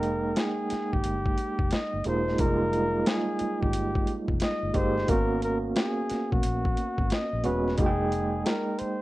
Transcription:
Already playing: F1 G#3 A#3 D#4 A#4 G5
0.03 closed hi-hat
0.36 G#4, snare, closed hi-hat
0.70 muted fingered electric bass stroke, snare, closed hi-hat
0.93 G#1 G4, kick
1.04 G1, closed hi-hat
1.26 kick
1.38 closed hi-hat
1.59 F1, kick
1.71 D#5, snare, closed hi-hat
1.94 G1
2.04 E1 G#3 A#3 D#4 F4 C5, closed hi-hat
2.28 snare
2.38 F1 G3 A#3 D#4 F4 A#4, kick, closed hi-hat
2.46 G#3
2.73 closed hi-hat
3.06 G#4, snare, closed hi-hat
3.39 muted fingered electric bass stroke, closed hi-hat
3.61 G#1 G4, kick
3.73 G1, closed hi-hat
3.95 kick
4.07 closed hi-hat
4.28 F1, kick
4.40 D#5, snare, closed hi-hat
4.63 G1
4.74 G1 G#3 A#3 D#4 G4 C5, kick, closed hi-hat
4.98 snare
5.08 G#1 A#3 B3 C#4 F#4 A#4, kick, closed hi-hat
5.42 A#4, closed hi-hat
5.76 G#4, snare, closed hi-hat
6.10 muted fingered electric bass stroke, snare, closed hi-hat
6.32 B1 F#4, kick
6.43 A#1, closed hi-hat
6.65 kick
6.77 closed hi-hat
6.98 G#1, kick
7.10 D#5, snare, closed hi-hat
7.33 A#1
7.44 E1 G#3 B3 C#4 F#4 B4, closed hi-hat
7.68 snare
7.78 F1 G#3 A#3 D#4 F#4 G#4, kick, closed hi-hat
7.86 G5
8.12 closed hi-hat
8.46 A#4, snare, closed hi-hat
8.79 C5, muted fingered electric bass stroke, closed hi-hat

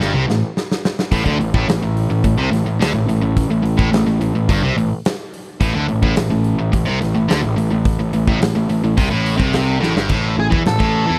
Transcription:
0.00 G1 G2, snare
0.13 C2 C3
0.27 A1 A2, snare
0.57 snare
0.71 snare
0.85 snare
0.99 snare
1.11 A1 A2, kick, open hi-hat
1.25 D2 D3, kick
1.40 A1 A2, open hi-hat
1.54 A1 A2, kick
1.67 A1 A2, snare, open hi-hat
1.83 A1 A2
1.97 open hi-hat
2.10 A1 A2
2.24 A1 A2, kick, open hi-hat
2.37 C2 C3
2.51 A1 A2, snare, open hi-hat
2.66 A1 A2
2.80 D2 D3, snare, open hi-hat
2.94 A1 A2
3.07 A1 A2, open hi-hat
3.22 A1 A2
3.37 kick, open hi-hat
3.49 A1 A2
3.63 A1 A2, open hi-hat
3.77 A1 A2, kick
3.91 A1 A2, snare, open hi-hat
4.06 A1 A2
4.20 A1 A2, open hi-hat
4.34 A1 A2
4.49 G1 G2, kick, open hi-hat
4.63 C2 C3
4.75 A1 A2, open hi-hat
5.05 snare, open hi-hat
5.34 open hi-hat
5.61 A1 A2, kick, open hi-hat
5.74 D2 D3
5.88 A1 A2, open hi-hat
6.02 A1 A2, kick
6.16 A1 A2, snare, open hi-hat
6.30 A1 A2
6.44 open hi-hat
6.59 A1 A2
6.72 A1 A2, kick, open hi-hat
6.85 C2 C3
7.01 A1 A2, snare, open hi-hat
7.15 A1 A2
7.28 D2 D3, snare, open hi-hat
7.43 A1 A2
7.56 A1 A2, open hi-hat
7.70 A1 A2
7.85 kick, open hi-hat
7.99 A1 A2
8.13 A1 A2, open hi-hat
8.28 A1 A2, kick
8.41 A1 A2, snare, open hi-hat
8.55 A1 A2
8.69 A1 A2, open hi-hat
8.83 A1 A2
8.97 C2 C3, kick, open hi-hat
9.10 A1 A2
9.26 open hi-hat
9.37 C2 C3, kick
9.53 snare, open hi-hat
9.80 A1 A2, snare
9.94 G1 G2, snare
10.09 A1 A2, kick, crash
10.38 A1 A2 G#4
10.50 E2 E3, kick
10.65 A1 A2 A4, snare, open hi-hat
10.79 A1 A2, kick, snare
11.07 E2 E3

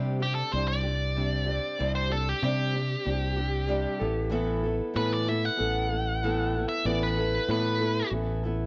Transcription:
Already playing: C3 G3 C4 D4 G4
0.20 C4 D4 G4
0.35 A4
0.52 C2 G3 C4 D4 G4 C5
0.68 D5
0.83 C4 D4 G4
1.16 C3 G3 C4 D4 G4
1.46 C4 D4 G4
1.78 C2 C3 G3 C4 D4 G4
1.95 C5
2.10 C4 D4 G4 A4
2.29 G4
2.42 C3 G3 C4 D4 G4
2.73 C4 D4 G4
3.04 C2 G3 C4 D4 G4
3.36 C4 D4 G4
3.67 C3 G3 C4 D4 G4
4.00 A1 B3 E4 A4
4.30 A2 E3 B3 E4 A4
4.63 B3 E4 A4
4.94 A2 E3 B3 E4 A4 B4
5.13 D5
5.26 B3 E4 A4 E5
5.45 F#5
5.56 A1 E3 B3 E4 A4
5.89 B3 E4 A4
6.23 A2 E3 B3 E4 A4
6.56 B3 E4 A4
6.68 E5
6.85 A1 A2 E3 B3 E4 A4 D5
7.03 B4
7.17 B3 E4 A4
7.48 A2 E3 B3 E4 A4 B4
7.78 E4 A4
7.82 B3
8.11 A1 E3 B3 E4 A4
8.43 B3 E4 A4

